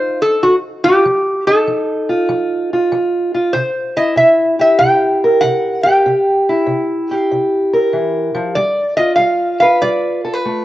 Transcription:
Already playing: steel-string acoustic guitar F3 D#4 F4, resonator guitar played with a steel bar C5
0.22 resonator guitar played with a steel bar A4
0.43 steel-string acoustic guitar F3, resonator guitar played with a steel bar F#4
0.84 steel-string acoustic guitar F4, resonator guitar played with a steel bar G4
1.05 steel-string acoustic guitar F3
1.47 steel-string acoustic guitar D#4, resonator guitar played with a steel bar A4
1.67 steel-string acoustic guitar F3
2.09 steel-string acoustic guitar F4
2.29 steel-string acoustic guitar F3
2.73 steel-string acoustic guitar F4
2.92 steel-string acoustic guitar F3
3.35 steel-string acoustic guitar F4
3.53 steel-string acoustic guitar C3, resonator guitar played with a steel bar C5
3.97 steel-string acoustic guitar E4, resonator guitar played with a steel bar D#5
4.16 steel-string acoustic guitar C3, resonator guitar played with a steel bar E5
4.59 steel-string acoustic guitar G4, resonator guitar played with a steel bar E5
4.79 steel-string acoustic guitar C3, resonator guitar played with a steel bar G5
5.24 steel-string acoustic guitar A#4
5.41 steel-string acoustic guitar C3, resonator guitar played with a steel bar F#5
5.83 steel-string acoustic guitar G4, resonator guitar played with a steel bar G5
6.06 steel-string acoustic guitar C3
6.49 steel-string acoustic guitar E4
6.66 steel-string acoustic guitar C3
7.11 steel-string acoustic guitar G4
7.16 resonator guitar played with a steel bar F5
7.31 steel-string acoustic guitar C3
7.73 steel-string acoustic guitar A#4
7.93 steel-string acoustic guitar E3
8.34 steel-string acoustic guitar F3
8.55 steel-string acoustic guitar G3, resonator guitar played with a steel bar D5
8.97 steel-string acoustic guitar F4, resonator guitar played with a steel bar D#5
9.16 steel-string acoustic guitar G3, resonator guitar played with a steel bar F5
9.60 steel-string acoustic guitar B4, resonator guitar played with a steel bar F5
9.82 steel-string acoustic guitar G3, resonator guitar played with a steel bar D5
10.25 steel-string acoustic guitar A4
10.33 steel-string acoustic guitar B4
10.45 steel-string acoustic guitar A3

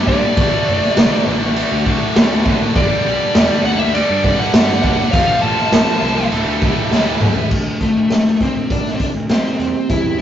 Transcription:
Already playing: overdriven electric guitar G2 D3, string machine G4 D5 B5 D6
0.06 picked electric bass G2, distorted electric guitar G2 D3, overdriven electric guitar G3 B3 D4 G4, lead electric guitar D5, kick
0.22 overdriven electric guitar G3 B3 D4 G4
0.37 picked electric bass D1, overdriven electric guitar D2 A2 D3 A3 F#4, string machine F#4 D5 A5, kick, crash
0.52 overdriven electric guitar D3 A3 F#4
0.67 picked electric bass F#1, distorted electric guitar D2, overdriven electric guitar A2 D3 A3 F#4
0.82 snare
0.96 picked electric bass C2, overdriven electric guitar D2 A2 D3 A3 F#4, snare, crash
1.11 overdriven electric guitar D3 A3 F#4
1.27 picked electric bass A1, distorted electric guitar D2 A2 D3, muted overdriven electric guitar stroke
1.42 overdriven electric guitar D3 A3 F#4
1.56 distorted electric guitar D2 A2 D3, crash
1.72 picked electric bass D2
1.86 distorted electric guitar D2, overdriven electric guitar A2 D3 A3 F#4, kick
2.16 overdriven electric guitar D2 A2 D3 A3 F#4, picked electric bass D2, snare, crash
2.32 overdriven electric guitar D3 A3 F#4
2.46 picked electric bass D2, distorted electric guitar D2, overdriven electric guitar A2 D3 A3 F#4, kick
2.62 overdriven electric guitar D3 A3 F#4
2.75 picked electric bass G1, overdriven electric guitar G2 D3 G3 B3, string machine G4 B5, lead electric guitar D5, kick, crash
2.79 overdriven electric guitar D4 G4
2.92 overdriven electric guitar G3 B3 D4 G4
3.06 picked electric bass B1, distorted electric guitar G2 D3, overdriven electric guitar G3 B3 D4 G4
3.35 picked electric bass E1, overdriven electric guitar G2 D3 G3 B3 D4 G4, snare, crash
3.51 overdriven electric guitar G3 B3 D4 G4
3.65 picked electric bass D2, distorted electric guitar G2 D3 G3, lead electric guitar F#5, muted overdriven electric guitar stroke
3.79 overdriven electric guitar G3 B3 D4 G4, lead electric guitar E5
3.94 distorted electric guitar G2 D3 G3, lead electric guitar D5, crash
4.10 picked electric bass G2
4.23 distorted electric guitar G2 D3, overdriven electric guitar G3 B3 D4 G4, kick
4.39 lead electric guitar F#5
4.53 overdriven electric guitar G2 D3 G3 B3 D4 G4, picked electric bass G2, snare, crash
4.68 overdriven electric guitar G3 B3 D4 G4
4.83 picked electric bass F#1, distorted electric guitar G2 D3, overdriven electric guitar G3 B3 D4 G4, kick
4.99 overdriven electric guitar G3 B3 D4 G4
5.11 picked electric bass F1, overdriven electric guitar F2 C3, string machine F4 C5 A5 C6, lead electric guitar F5, kick, crash
5.15 overdriven electric guitar F3 A3 C4 F4
5.28 overdriven electric guitar F3 A3 C4 F4
5.42 picked electric bass A1, distorted electric guitar F2 C3, overdriven electric guitar F3 A3 C4, lead electric guitar A5
5.46 overdriven electric guitar F4
5.59 snare
5.72 picked electric bass D1, overdriven electric guitar F2 C3 F3 A3 C4 F4, snare, crash
5.88 overdriven electric guitar F3 A3 C4 F4
6.02 picked electric bass C2, distorted electric guitar F2 C3 F3, muted overdriven electric guitar stroke
6.16 overdriven electric guitar F3 A3 C4 F4
6.31 picked electric bass D1, overdriven electric guitar D2 A2 D3 A3 E4, string machine F#4 E5 A5 D6, crash
6.46 picked electric bass D2
6.62 distorted electric guitar D2, overdriven electric guitar A2 D3 A3 E4, kick
6.90 picked electric bass D2, overdriven electric guitar D2 A2 D3 A3 E4, snare
7.05 overdriven electric guitar D3 A3 E4
7.20 picked electric bass D2, distorted electric guitar D2, overdriven electric guitar A2 D3 A3 E4, mid tom
7.35 overdriven electric guitar D3 A3 E4, floor tom
7.50 steel-string acoustic guitar D2 A2 D3, picked electric bass D2, kick, crash
7.81 steel-string acoustic guitar D2 A2, lead electric guitar A3, kick, closed hi-hat
7.96 picked electric bass D2
8.10 steel-string acoustic guitar D2 A2, snare, closed hi-hat
8.40 picked electric bass D2, steel-string acoustic guitar D2 A2 D3, lead electric guitar C4, kick, closed hi-hat
8.70 picked electric bass A1, steel-string acoustic guitar D2 A2, lead electric guitar D4, kick, closed hi-hat
8.85 snare
8.94 lead electric guitar C4
8.99 steel-string acoustic guitar D2 A2, lead electric guitar D4, kick, closed hi-hat
9.15 picked electric bass D2
9.29 steel-string acoustic guitar D2 A2 D3, lead electric guitar C4, snare, closed hi-hat
9.59 picked electric bass E2, steel-string acoustic guitar C3 G3 C4, closed hi-hat
9.90 picked electric bass E2, steel-string acoustic guitar C3 G3 C4, lead electric guitar E4, kick, closed hi-hat

